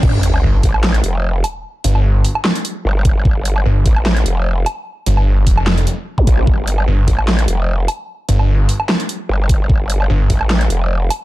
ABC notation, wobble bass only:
X:1
M:4/4
L:1/8
Q:"Swing 16ths" 1/4=149
K:Gm
V:1 name="Wobble bass" clef=bass
G,,,2 z A,,,2 F,,,2 z | z6 G,,,2 | G,,,2 z A,,,2 F,,,2 z | z6 z B,,, |
G,,,2 z A,,,2 F,,,2 z | z6 G,,,2 | G,,,2 z A,,,2 F,,,2 z |]